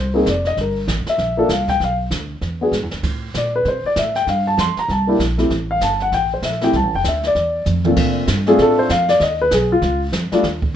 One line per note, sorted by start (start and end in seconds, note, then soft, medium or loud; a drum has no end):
0.00 0.25 C2 medium
0.00 0.25 C5 medium
0.14 0.25 A#3 medium
0.14 0.25 C4 soft
0.14 0.26 D#4 medium
0.14 0.26 G#4 medium
0.26 0.56 F1 medium
0.26 0.46 D5 medium
0.26 kick soft
0.26 snare soft
0.26 hi-hat pedal soft
0.45 0.58 D#5 medium
0.45 snare soft
0.57 0.87 G1 medium
0.57 brush sweep soft
0.57 kick soft
0.57 snare soft
0.61 0.77 A#4 soft
0.88 1.05 A1 medium
0.88 kick soft
0.88 snare medium
0.88 hi-hat pedal soft
1.06 1.48 E5 medium
1.06 muted upright bass stroke soft
1.06 snare soft
1.18 1.48 A#1 medium
1.18 brush sweep soft
1.18 kick soft
1.18 snare soft
1.37 1.48 A#3 medium
1.37 1.49 D4 medium
1.37 1.49 F4 medium
1.37 1.49 A4 medium
1.49 1.79 C2 medium
1.49 1.69 F5 medium
1.49 kick soft
1.49 snare soft
1.49 hi-hat pedal soft
1.68 1.81 G5 medium
1.68 kick soft
1.68 snare soft
1.80 2.10 B1 medium
1.80 1.94 F5 medium
1.80 brush sweep soft
1.80 kick soft
1.80 snare soft
2.11 2.41 D2 medium
2.11 kick soft
2.11 snare soft
2.11 hi-hat pedal soft
2.41 2.71 E2 medium
2.41 brush sweep soft
2.41 kick soft
2.41 snare soft
2.61 2.72 B3 soft
2.61 2.72 D4 soft
2.61 2.72 F#4 soft
2.61 2.73 G#4 soft
2.72 2.83 G#2 medium
2.72 snare soft
2.72 hi-hat pedal soft
2.83 2.92 E2 soft
2.91 3.03 D2 soft
2.91 snare soft
3.03 3.33 A2 medium
3.03 brush sweep soft
3.03 kick soft
3.03 snare soft
3.03 ride medium
3.34 3.64 A#2 medium
3.34 3.54 D5 medium
3.34 kick soft
3.34 snare soft
3.34 hi-hat pedal soft
3.56 3.66 B4 medium
3.65 3.83 C3 medium
3.65 3.85 C5 medium
3.65 brush sweep soft
3.65 kick soft
3.65 snare soft
3.84 3.97 D5 medium
3.84 muted upright bass stroke soft
3.96 4.26 A2 medium
3.96 4.16 E5 medium
3.96 kick soft
3.96 snare soft
3.96 hi-hat pedal soft
4.15 4.27 G5 medium
4.15 snare soft
4.27 4.57 G2 medium
4.27 4.46 F5 medium
4.27 brush sweep soft
4.27 kick soft
4.27 snare soft
4.47 4.58 A5 medium
4.57 4.75 F2 medium
4.57 4.77 C6 medium
4.57 kick soft
4.57 snare medium
4.57 hi-hat pedal soft
4.77 4.90 A#5 medium
4.77 muted upright bass stroke soft
4.77 snare soft
4.88 5.19 C2 medium
4.88 5.19 A5 medium
4.88 brush sweep soft
4.88 kick soft
4.88 snare soft
5.07 5.18 A#3 medium
5.07 5.19 D4 medium
5.07 5.19 E4 medium
5.07 5.19 G4 medium
5.19 5.49 A#1 medium
5.19 kick soft
5.19 snare soft
5.19 hi-hat pedal soft
5.38 5.49 A3 soft
5.38 5.49 C4 soft
5.38 5.49 E4 soft
5.38 5.50 G4 medium
5.38 snare soft
5.50 5.80 A1 medium
5.50 brush sweep soft
5.50 kick soft
5.50 snare soft
5.71 5.82 F5 medium
5.81 6.11 G1 medium
5.81 6.00 A5 medium
5.81 kick soft
5.81 snare soft
5.81 hi-hat pedal medium
6.00 6.13 F#5 medium
6.00 snare soft
6.12 6.42 A1 medium
6.12 6.31 G5 medium
6.12 brush sweep soft
6.12 kick soft
6.12 snare soft
6.34 6.44 C5 medium
6.42 6.72 A#1 medium
6.42 6.62 E5 medium
6.42 kick soft
6.42 snare soft
6.42 hi-hat pedal soft
6.52 snare soft
6.61 6.72 A3 soft
6.61 6.73 C4 soft
6.61 snare soft
6.63 6.73 E4 soft
6.63 6.73 G4 medium
6.63 6.75 G5 medium
6.63 snare soft
6.73 6.83 C2 medium
6.73 6.93 A5 medium
6.73 brush sweep soft
6.73 kick soft
6.73 snare soft
6.83 6.94 A1 medium
6.94 7.04 F1 medium
6.94 7.06 G5 medium
7.04 7.34 D2 medium
7.04 7.25 E5 medium
7.04 kick soft
7.04 snare soft
7.04 hi-hat pedal medium
7.23 7.65 D5 medium
7.23 snare soft
7.35 7.65 E2 medium
7.35 brush sweep soft
7.35 kick soft
7.35 snare soft
7.66 7.96 F2 medium
7.66 hi-hat pedal soft
7.66 mid tom soft
7.84 8.25 A#2 soft
7.84 8.25 A3 soft
7.84 8.26 C4 soft
7.84 8.26 D4 soft
7.84 8.26 F4 medium
7.84 mid tom soft
7.96 8.27 A#2 medium
7.96 brush sweep soft
7.96 kick medium
7.96 snare soft
7.96 crash medium
8.28 8.58 G2 medium
8.28 kick soft
8.28 snare medium
8.28 hi-hat pedal medium
8.46 8.87 A3 medium
8.46 8.88 C4 medium
8.46 8.88 D4 medium
8.46 8.88 F4 medium
8.46 8.59 G#4 medium
8.46 snare soft
8.58 8.88 A2 medium
8.58 8.79 A4 medium
8.58 brush sweep soft
8.58 kick soft
8.58 snare soft
8.79 8.90 C5 medium
8.89 9.19 F2 medium
8.89 9.08 F5 medium
8.89 kick soft
8.89 snare medium
8.89 hi-hat pedal soft
9.08 9.21 D5 medium
9.08 snare soft
9.20 9.50 D#2 medium
9.20 9.40 D#5 medium
9.20 brush sweep soft
9.20 kick soft
9.20 snare soft
9.41 9.52 B4 medium
9.51 9.81 B1 medium
9.51 9.70 G#4 medium
9.51 kick soft
9.51 snare medium
9.51 hi-hat pedal medium
9.72 10.00 F4 medium
9.82 10.12 C#2 medium
9.82 brush sweep soft
9.82 kick soft
9.82 snare soft
10.12 10.30 F2 medium
10.12 kick soft
10.12 snare medium
10.12 hi-hat pedal soft
10.32 10.43 G3 medium
10.32 10.43 A3 medium
10.32 10.43 D4 medium
10.32 10.44 F4 medium
10.32 muted upright bass stroke soft
10.32 snare soft
10.43 10.73 D#2 medium
10.43 brush sweep soft
10.43 kick soft
10.43 snare soft
10.62 kick medium